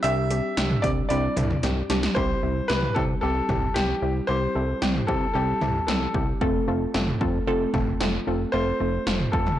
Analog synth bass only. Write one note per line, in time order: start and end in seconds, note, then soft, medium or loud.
0.04 0.41 C2 loud
0.57 0.76 C2 loud
0.84 1.02 C2 loud
1.10 1.29 C2 loud
1.37 1.55 C2 medium
1.63 1.82 C2 loud
1.90 2.08 C2 loud
2.16 2.35 C2 loud
2.43 2.62 C2 medium
2.70 2.88 C2 medium
2.96 3.15 C3 medium
3.23 3.41 C2 loud
3.49 3.68 C2 medium
3.76 3.94 C2 loud
4.02 4.21 C2 loud
4.29 4.47 C2 loud
4.55 4.74 C2 loud
4.82 5.01 C2 medium
5.09 5.27 C3 medium
5.35 5.54 C2 loud
5.62 5.80 C2 loud
5.88 6.07 C2 medium
6.14 6.33 C2 loud
6.41 6.60 F1 loud
6.68 6.86 F1 loud
6.94 7.13 F1 loud
7.21 7.39 F2 loud
7.47 7.66 F1 loud
7.74 7.92 F1 loud
8.01 8.19 F1 loud
8.27 8.46 F1 medium
8.54 8.72 F1 loud
8.80 8.99 F1 loud
9.07 9.25 F1 loud
9.33 9.52 F2 loud